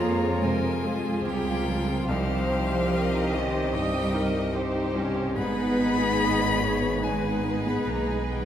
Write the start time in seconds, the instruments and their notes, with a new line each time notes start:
Already playing: grand piano F2 G#3 C4 F4, double bass section F2, violin section F4 G#4, viola section G#4
0.00 grand piano G#3, cello section A#3, violin section C#5, violin A#5
0.22 grand piano C4
0.42 grand piano C3, cello section G#3, viola section A#4, violin section A#4 C5, violin G#5
0.64 grand piano C4
0.83 viola section F4, grand piano F4, violin section G#4
1.05 grand piano G#3
1.24 double bass section C#2, cello section G3, grand piano C4, violin section G4 A#4, violin G5
1.47 grand piano F4
1.68 grand piano F3, violin section F4
1.89 grand piano C4
2.08 double bass section C2, grand piano C2, cello section F3, violin section D#4 G4 C5, viola section C5, violin F5
2.29 grand piano C4
2.49 violin section C4, grand piano D#4
2.71 grand piano G3
2.91 grand piano C4, violin section C4 D#5, viola section A#4
3.13 grand piano D#4
3.32 cello section D#3, grand piano G3, violin section C#4, viola section C5, violin D#5
3.53 grand piano C4
3.73 grand piano G2, cello section G3, violin section D#4 D#5, viola section D#5, violin G5
3.93 grand piano C4
4.13 grand piano D#4, viola section A#4
4.34 grand piano G3
4.54 grand piano C4, violin section D#4 G4 C5, viola section C5
4.75 grand piano D#4
4.95 grand piano G3, viola section C#4
5.16 grand piano C4
5.36 double bass section G#1, grand piano G#2, cello section B3, violin section D#4 G#4 B4, viola section B4, violin B5
5.58 grand piano B3
5.78 grand piano D#4
5.99 grand piano G#3
6.19 grand piano B3, viola section D#5
6.40 grand piano D#4
6.60 grand piano G#3, viola section C#5
6.82 grand piano B3
7.03 grand piano D#3, cello section G#3, violin section D#4 G#4 B4, viola section B4, violin G#5
7.24 grand piano B3
7.44 grand piano D#4
7.67 grand piano G#3, cello section B3, violin B5
7.88 double bass section B1, cello section A#3, grand piano B3, violin A#5
8.10 cello section G#3, grand piano D#4, violin G#5
8.31 cello section G3, grand piano B3, violin G5